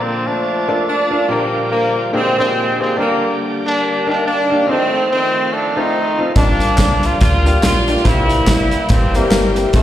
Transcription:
Already playing: grand piano A#2 A#3 D4 F4 A4 D5, horn section D3 F3, tonewheel organ F3 D4 A4
0.02 horn section C4
0.27 horn section F3 A3 D4
0.68 grand piano A#3 D4 F4 A4 D5
0.87 horn section F3 A3 D4
1.11 grand piano A#3 D4 F4 A4 F5
1.28 tonewheel organ A#2 F3 G3 A#3 D4 G4, grand piano A#2 A#3 D4 F4 G4 D5, horn section D3 F3 A#3
1.71 horn section D3 F3 A#3
2.13 grand piano A#2 A#3 D4 G4 G#4 C5, tonewheel organ D3 G#3 A#3 C4 G4, horn section F3 G#3 C4
2.38 horn section F3 G#3 C4, grand piano A#3 D4 G4 G#4 C5
2.80 grand piano A#3 D4 G4 G#4 C5, horn section C4
2.96 grand piano D3 A#3 D4 G4 D5, tonewheel organ D3 G3 A#3 D4 F4, horn section D3 G3 A#3
3.02 tonewheel organ G4
3.66 horn section G3 A#3 D4
4.07 grand piano A#3 D4 D#4 G4 F5, horn section D4
4.26 horn section G3 A#3 D4
4.50 grand piano A#3 D4 D#4 G4 F5
4.65 tonewheel organ D#3 F3 A3 C4 F4, horn section D#3 A3 C4, grand piano C4 D#4 F4 G4 D#5
4.72 grand piano A4
5.10 horn section D#3 A3 C4
5.52 horn section A3 D4
5.76 horn section A3 C4 D#4, grand piano C4 D#4 F4 A4 C5
6.18 grand piano C4 D#4 F4 A4 D#5
6.36 fm bass G1, grand piano G2 A#3 D4 F4 G4 D5, tonewheel organ F3 G3 A#3 D4 G4, horn section F3 A#3 D4, kick, closed hi-hat, tambourine
6.60 fm bass A#1, closed hi-hat, tambourine
6.78 fm bass C2, kick, snare, clap, closed hi-hat, tambourine
7.03 horn section F4, closed hi-hat, tambourine
7.21 fm bass D2, horn section A#3 D4 F4, kick, closed hi-hat, tambourine
7.46 grand piano A#3 D4 F4 G4 F5, closed hi-hat, tambourine
7.63 fm bass A#1, horn section A#3 D4 F4, snare, clap, closed hi-hat, tambourine
7.88 grand piano A#3 D4 F4 G4 D5, closed hi-hat, tambourine
7.97 snare
8.04 fm bass C2, grand piano C3 A#3 C4 E4 G4 C5, tonewheel organ E3 G3 A#3 C4 G4, horn section G3 A#3 E4, kick, closed hi-hat, tambourine
8.29 fm bass A1, closed hi-hat, tambourine
8.47 fm bass G1, horn section G3 A#3 E4, kick, snare, clap, closed hi-hat, tambourine
8.71 closed hi-hat, tambourine
8.89 fm bass G1, horn section E3 G3 C4, kick, closed hi-hat, tambourine
9.14 horn section E3 G3 A#3, grand piano A#3 C4 E4 G4 C5, closed hi-hat, tambourine
9.31 fm bass G1, snare, clap, closed hi-hat, tambourine
9.56 grand piano A#3 C4 E4 G4 A#4, closed hi-hat, tambourine
9.73 fm bass F1, horn section C3 D#3 A3, tonewheel organ D#3 F3 A3 C4 F4, grand piano A3 C4 D#4 F4 C5, kick, closed hi-hat, tambourine

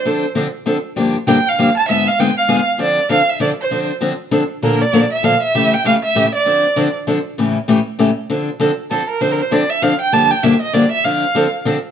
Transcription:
Already playing: violin C5
0.05 steel-string acoustic guitar D3 F3 C4 D4 A4
0.35 steel-string acoustic guitar D3 F3 C4 D4 A4
0.66 steel-string acoustic guitar D3 F3 C4 D4 A4
0.96 steel-string acoustic guitar G2 D3 F3 A#3 D4 G4
1.27 steel-string acoustic guitar G2 D3 F3 A#3 D4 G4, violin G5
1.48 violin F5
1.59 steel-string acoustic guitar G2 D3 F3 A#3 D4 G4
1.77 violin A5
1.89 steel-string acoustic guitar G#2 D3 G#3 B3 F4 G#4, violin E5
2.08 violin F5
2.19 steel-string acoustic guitar G#2 D3 G#3 B3 F4 G#4, violin G5
2.38 violin F5
2.48 steel-string acoustic guitar G#2 D3 G#3 B3 F4 G#4
2.78 steel-string acoustic guitar D3 F3 C4 D4 A4, violin D5
3.09 steel-string acoustic guitar D3 F3 C4 D4 A4, violin F5
3.30 violin E5
3.40 steel-string acoustic guitar D3 F3 C4 D4 A4, violin D5
3.61 violin C5
3.71 steel-string acoustic guitar D3 F3 C4 D4 A4
4.01 steel-string acoustic guitar D3 F3 C4 D4 A4
4.31 steel-string acoustic guitar D3 F3 C4 D4 A4
4.62 steel-string acoustic guitar A#2 D3 F3 A#3 D4 A4, violin A#4
4.82 violin D5
4.93 steel-string acoustic guitar A#2 D3 F3 A#3 D4 A4
5.12 violin E5
5.23 steel-string acoustic guitar A#2 D3 F3 A#3 D4 A4, violin F5
5.42 violin E5
5.55 steel-string acoustic guitar A2 C#3 E3 A3 C#4 G4
5.74 violin G5
5.84 steel-string acoustic guitar A2 C#3 E3 A3 C#4 G4, violin F5
6.04 violin E5
6.15 steel-string acoustic guitar A2 C#3 E3 A3 C#4 G4
6.35 violin D5
6.46 steel-string acoustic guitar D3 F3 C4 D4 A4
6.76 steel-string acoustic guitar D3 F3 C4 D4 A4
7.07 steel-string acoustic guitar D3 F3 C4 D4 A4
7.38 steel-string acoustic guitar A2 C#3 E3 A3 C#4 G4
7.68 steel-string acoustic guitar A2 C#3 E3 A3 C#4 G4
7.99 steel-string acoustic guitar A2 C#3 E3 A3 C#4 G4
8.30 steel-string acoustic guitar D3 F3 C4 D4 A4
8.60 steel-string acoustic guitar D3 F3 C4 D4 A4
8.91 steel-string acoustic guitar D3 F3 C4 D4 A4, violin A4
9.09 violin A#4
9.21 steel-string acoustic guitar D3 F3 C4 D4 A4, violin C5
9.32 violin A#4
9.42 violin C5
9.51 steel-string acoustic guitar D3 F3 C4 D4 A4, violin D5
9.70 violin E5
9.82 steel-string acoustic guitar D3 F3 C4 D4 A4, violin F5
10.01 violin G5
10.12 steel-string acoustic guitar G2 D3 F3 A#3 D4 G4, violin A5
10.31 violin G5
10.43 steel-string acoustic guitar G2 D3 F3 A#3 D4 G4, violin E5
10.62 violin D#5
10.73 steel-string acoustic guitar G2 D3 F3 A#3 D4 G4, violin D5
10.92 violin E5
11.04 steel-string acoustic guitar D3 F3 C4 D4 A4, violin F5
11.35 steel-string acoustic guitar D3 F3 C4 D4 A4
11.65 steel-string acoustic guitar D3 F3 C4 D4 A4

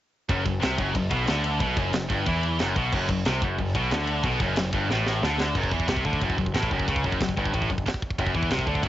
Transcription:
0.29 picked electric bass F#1, distorted electric guitar F#2, kick, ride
0.45 picked electric bass F#1, distorted electric guitar F#2, kick, ride
0.60 picked electric bass C2, distorted electric guitar C3, snare, ride
0.78 picked electric bass F#1, distorted electric guitar F#2, kick, ride
0.95 picked electric bass F#1, distorted electric guitar F#2, kick, ride
1.10 picked electric bass B1, distorted electric guitar B2, kick, ride
1.27 picked electric bass D2, distorted electric guitar D3, snare, ride
1.44 ride
1.60 picked electric bass B1, distorted electric guitar B2, kick, ride
1.77 picked electric bass F#1, distorted electric guitar F#2, kick, ride
1.93 picked electric bass F#1, distorted electric guitar F#2, snare, ride
2.10 picked electric bass G1, distorted electric guitar G2, kick, ride
2.26 picked electric bass E2, distorted electric guitar E3, kick, ride
2.43 ride
2.59 picked electric bass F#1, distorted electric guitar F#2, snare, ride
2.76 picked electric bass B1, distorted electric guitar B2, kick, ride
2.92 picked electric bass F#1, distorted electric guitar F#2, kick, crash
3.09 picked electric bass F#1, distorted electric guitar F#2, kick, ride
3.25 picked electric bass C2, distorted electric guitar C3, snare, ride
3.42 picked electric bass F#1, distorted electric guitar F#2, kick, ride
3.59 picked electric bass F#1, distorted electric guitar F#2, kick, ride
3.75 picked electric bass B1, distorted electric guitar B2, kick, ride
3.91 picked electric bass D2, distorted electric guitar D3, snare, ride
4.07 ride
4.23 picked electric bass B1, distorted electric guitar B2, kick, ride
4.40 picked electric bass F#1, distorted electric guitar F#2, kick, ride
4.56 picked electric bass F#1, distorted electric guitar F#2, snare, ride
4.73 picked electric bass G1, distorted electric guitar G2, kick, ride
4.88 picked electric bass A1, distorted electric guitar A2, snare
5.07 snare
5.22 picked electric bass D2, distorted electric guitar D3, snare
5.40 snare
5.55 picked electric bass F#1, distorted electric guitar F#2, kick, crash
5.63 kick
5.71 picked electric bass E2, distorted electric guitar E3, kick
5.80 kick
5.88 picked electric bass C2, distorted electric guitar C3, kick, snare, ride bell
5.97 kick
6.05 picked electric bass D2, distorted electric guitar D3, kick
6.13 kick
6.21 picked electric bass F#1, distorted electric guitar F#2, kick, ride bell
6.30 kick
6.37 picked electric bass F#1, distorted electric guitar F#2, kick
6.46 kick
6.54 picked electric bass A1, distorted electric guitar A2, kick, snare, ride bell
6.63 kick
6.70 picked electric bass F#1, distorted electric guitar F#2, kick
6.79 kick
6.87 picked electric bass C#2, distorted electric guitar C#3, kick, ride bell
6.96 kick
7.03 picked electric bass F#1, distorted electric guitar F#2, kick
7.12 kick
7.20 picked electric bass F#1, distorted electric guitar F#2, kick, snare, ride bell
7.28 kick
7.36 picked electric bass G1, distorted electric guitar G2, kick
7.45 kick
7.53 picked electric bass A1, distorted electric guitar A2, kick, ride bell
7.62 kick
7.70 picked electric bass F#1, distorted electric guitar F#2, kick
7.78 kick
7.86 muted distorted electric guitar stroke, kick, snare, ride bell
7.94 kick
8.02 kick
8.10 kick
8.18 picked electric bass F#1, distorted electric guitar F#2, kick, ride bell
8.26 kick
8.35 picked electric bass E2, distorted electric guitar E3, kick
8.43 kick
8.50 picked electric bass C2, distorted electric guitar C3, kick, snare, ride bell
8.59 kick
8.67 picked electric bass D2, distorted electric guitar D3, kick
8.75 kick
8.83 picked electric bass F#1, distorted electric guitar F#2, kick, ride bell

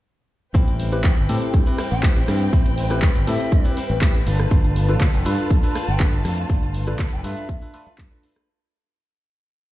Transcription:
0.54 fingered electric bass A1, clean electric guitar G3 C4 E4 B4, tine electric piano C4 E4 G4 B4, violin section C4 B4 G5, kick, closed hi-hat
0.68 closed hi-hat
0.80 open hi-hat
0.92 tine electric piano C4 E4 G4 B4, clean electric guitar C4 E4 B4, closed hi-hat
1.04 fingered electric bass E2, clean electric guitar G3 E4 B4, kick, clap, closed hi-hat
1.17 fingered electric bass G1, closed hi-hat
1.28 fingered electric bass A2, clean electric guitar G3 C4 E4 B4, tine electric piano C4 E4 G4 A4, open hi-hat
1.41 clean electric guitar C4 E4 B4, closed hi-hat
1.54 fingered electric bass G2, kick, closed hi-hat
1.66 tine electric piano C4 E4 G4 B4, clean electric guitar C4 E4 B4, closed hi-hat
1.78 clean electric guitar G3 C4 E4 B4, cross-stick, open hi-hat
1.91 fingered electric bass A1, clean electric guitar C4 B4, flute G5
2.03 clean electric guitar G3 C4 E4 B4, tine electric piano C4 E4 G4 B4, kick, clap, closed hi-hat
2.16 closed hi-hat
2.27 fingered electric bass G2, clean electric guitar G3 C4 E4 B4, cross-stick, open hi-hat
2.41 closed hi-hat
2.52 fingered electric bass A1, clean electric guitar G3 C4 E4 B4, tine electric piano C4 E4 G4 B4, kick, closed hi-hat
2.66 closed hi-hat
2.78 open hi-hat
2.90 tine electric piano C4 E4 G4 B4, clean electric guitar C4 E4 B4, cross-stick, closed hi-hat
3.02 fingered electric bass E2, clean electric guitar G3 C4 E4 B4, kick, clap, closed hi-hat
3.15 fingered electric bass G1, closed hi-hat
3.26 fingered electric bass A2, clean electric guitar G3 C4 E4 B4, tine electric piano C4 E4 G4 A4, flute E5, open hi-hat
3.39 clean electric guitar C4 E4 B4, closed hi-hat
3.52 fingered electric bass G2, kick, closed hi-hat
3.64 tine electric piano C4 E4 G4 B4, clean electric guitar C4 E4 B4, closed hi-hat
3.76 clean electric guitar G3 C4 E4 B4, open hi-hat
3.90 fingered electric bass A1, closed hi-hat
4.01 clean electric guitar G3 C4 E4 B4, tine electric piano C4 E4 G4 B4, kick, clap, closed hi-hat
4.15 closed hi-hat
4.26 fingered electric bass G1, clean electric guitar A3 D4 F4 B4, violin section F4 A5, open hi-hat
4.40 cross-stick, closed hi-hat
4.51 fingered electric bass G1, clean electric guitar A3 D4 F4 B4, tine electric piano D4 F4 A4 B4, kick, closed hi-hat
4.64 closed hi-hat
4.76 open hi-hat
4.88 tine electric piano D4 F4 A4 B4, clean electric guitar D4 F4 B4, closed hi-hat
5.00 fingered electric bass D2, clean electric guitar A3 D4 F4 B4, kick, clap, closed hi-hat
5.14 fingered electric bass F1, closed hi-hat
5.25 fingered electric bass G2, clean electric guitar A3 D4 F4 B4, tine electric piano D4 F4 A4 B4, open hi-hat
5.38 clean electric guitar D4 F4 B4, closed hi-hat
5.50 fingered electric bass F2, kick, closed hi-hat
5.63 tine electric piano D4 F4 A4 B4, clean electric guitar D4 F4 B4, closed hi-hat
5.75 clean electric guitar A3 D4 F4 B4, cross-stick, open hi-hat
5.88 fingered electric bass G1, flute G5
6.00 clean electric guitar A3 D4 F4 B4, tine electric piano D4 F4 A4 B4, kick, clap, closed hi-hat
6.13 closed hi-hat
6.24 fingered electric bass F2, clean electric guitar A3 D4 F4 B4, cross-stick, open hi-hat
6.38 closed hi-hat
6.49 fingered electric bass G1, clean electric guitar A3 D4 F4 B4, tine electric piano D4 F4 A4 B4, kick, closed hi-hat
6.63 closed hi-hat
6.74 open hi-hat
6.87 tine electric piano D4 F4 A4 B4, clean electric guitar D4 F4 B4, cross-stick, closed hi-hat
6.99 fingered electric bass D2, clean electric guitar A3 D4 F4 B4, kick, clap, closed hi-hat
7.12 fingered electric bass F1, flute G5, closed hi-hat
7.23 fingered electric bass G2, clean electric guitar A3 D4 F4 B4, tine electric piano D4 F4 A4 B4, flute E5, open hi-hat
7.37 clean electric guitar D4 F4 B4, closed hi-hat
7.49 fingered electric bass F2, kick, closed hi-hat
7.61 tine electric piano D4 F4 A4 B4, clean electric guitar D4 F4 B4, closed hi-hat
7.73 clean electric guitar A3 D4 F4 B4, tine electric piano D4 F4 A4 B4, open hi-hat
7.86 clean electric guitar D4 F4 B4, muted fingered electric bass stroke, closed hi-hat
7.98 fingered electric bass G2, clean electric guitar A3 D4, kick, clap, closed hi-hat
8.11 tine electric piano D4 F4 A4 B4, closed hi-hat
8.23 clean electric guitar A3 D4 F4 B4, open hi-hat
8.36 cross-stick, closed hi-hat

